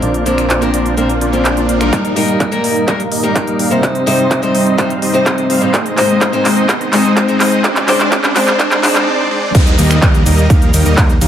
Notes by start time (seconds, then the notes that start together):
Already playing: A#2 F3 C4 D4 A#4, riser
0.02 A#1 A#3 D4 F4 C5 D5, closed hi-hat
0.14 closed hi-hat
0.25 A#2 F3 A#3 C4 D4 F4 A#4 C5 D5, closed hi-hat
0.38 finger snap, closed hi-hat
0.50 A#3 D4 F4 C5 D5, clap, closed hi-hat
0.61 A#2 F3 C4 D4 A#4, closed hi-hat
0.74 A#3 D4 F4 C5 D5, closed hi-hat
0.86 closed hi-hat
0.97 A#2 F3 A#3 C4 D4 F4 A#4 C5 F5, closed hi-hat
1.09 closed hi-hat
1.21 A#3 D4 F4 C5 D5, closed hi-hat
1.32 A#2 F3 C4 D4 A#4, closed hi-hat
1.45 clap, closed hi-hat
1.57 A#3 D4 F4 C5 D5, closed hi-hat
1.69 A#3 D4 F4 C5 F5, closed hi-hat
1.80 G3 A#3 D#4 A#4, finger snap, closed hi-hat
1.93 G3 A#3 D#4 A#4, kick, clap, closed hi-hat, riser
2.05 closed hi-hat
2.16 G3 A#3 D#4 A#4 D#5, open hi-hat
2.28 closed hi-hat
2.40 kick, clap, closed hi-hat
2.51 G3 A#3 D#4 A#4, closed hi-hat
2.64 G3 A#3 D#4 A#4 D#5, open hi-hat
2.76 closed hi-hat
2.87 G3 A#3 D#4 A#4 F5, kick, clap, closed hi-hat
3.00 closed hi-hat
3.12 G3 A#3 D#4 A#4 D#5, open hi-hat
3.23 G3 A#3 D#4 A#4, closed hi-hat
3.36 kick, clap, closed hi-hat
3.47 G3 A#3 D#4 A#4 D#5, closed hi-hat
3.59 G3 A#3 D#4 A#4 F5, open hi-hat
3.70 C3 G3 C4 D#4 C5, closed hi-hat
3.83 G3 C4 D#4 C5 D#5, kick, clap, closed hi-hat
3.95 closed hi-hat
4.06 C3 G3 C4 D#4 C5 D#5, open hi-hat
4.19 closed hi-hat
4.31 D#4 D#5, kick, clap, closed hi-hat
4.42 C3 G3 C4 D#4 C5, closed hi-hat
4.55 G3 C4 D#4 C5 D#5, open hi-hat
4.67 closed hi-hat
4.78 C3 G3 C4 D#4 C5 F5, kick, clap, closed hi-hat
4.90 closed hi-hat
5.02 G3 C4 D#4 C5 D#5, open hi-hat
5.13 C3 G3 C4 D#4 C5, closed hi-hat
5.26 kick, clap, closed hi-hat
5.38 G3 C4 D#4 C5 D#5, closed hi-hat
5.50 G3 C4 D#4 C5 F5, open hi-hat
5.61 G#2 G#3 C4 D#4 C5, closed hi-hat
5.74 G#3 C4 D#4 C5 D#5, kick, clap, closed hi-hat
5.86 closed hi-hat
5.97 G#2 G#3 C4 D#4 C5 D#5, clap, open hi-hat
6.09 closed hi-hat
6.21 G#3 C4 D#4 D#5, kick, clap, closed hi-hat
6.32 G#2 G#3 C4 D#4 C5, closed hi-hat
6.45 G#3 C4 D#4 C5 D#5, clap, open hi-hat
6.57 closed hi-hat
6.69 G#3 C4 D#4 C5 D#5, kick, clap, closed hi-hat
6.81 closed hi-hat
6.92 G#2 G#3 C4 D#4 C5 D#5, clap, open hi-hat
7.05 closed hi-hat
7.17 kick, clap, closed hi-hat
7.28 G#2 G#3 C4 D#4 C5, closed hi-hat
7.40 G#3 C4 D#4 C5 D#5, clap, open hi-hat
7.52 closed hi-hat
7.64 G#3 C4 D4 C5 D5, kick, clap, closed hi-hat
7.76 clap, closed hi-hat
7.87 G#2 G#3 C4 D4 C5 D5, clap, open hi-hat
8.00 clap, closed hi-hat
8.12 G#3 C4 C5, kick, clap, closed hi-hat
8.24 clap, closed hi-hat
8.35 G#2 G#3 C4 D4 C5 D5, clap, open hi-hat
8.48 clap, closed hi-hat
8.59 G#2 G#3 C4 D4 C5 D5, kick, clap, closed hi-hat
8.71 clap, closed hi-hat
8.82 G#2 G#3 C4 D4 C5 D5, clap, open hi-hat
8.95 clap, closed hi-hat
9.07 G#3 C4 D4 C5 D5
9.31 G#3 C4 D4 C5 D5
9.55 D#2 G3 A#3 D#4 D#5, kick, closed hi-hat, crash, ride, downlifter, shaker
9.67 closed hi-hat
9.79 D#2 G3 A#3 D#4 A#4 D#5, open hi-hat, ride, shaker
9.91 finger snap, closed hi-hat, shaker
10.02 kick, clap, closed hi-hat, ride, shaker
10.14 closed hi-hat
10.26 D#2 G3 A#3 D#4 A#4 D#5, open hi-hat, ride, shaker
10.38 closed hi-hat, shaker
10.50 D#2 G3 A#3 D#4 A#4 F5, kick, closed hi-hat, ride, shaker
10.62 closed hi-hat
10.74 D#2 G3 A#3 D#4 A#4 G5, open hi-hat, ride, shaker
10.86 D#2 G3 A#3 D#4 A#4 D#5, closed hi-hat, shaker
10.97 A#3 D#4 A#4, kick, clap, closed hi-hat, ride, shaker
11.10 closed hi-hat
11.21 D#2 G3 A#3 D#4 A#4 F5, open hi-hat, ride, shaker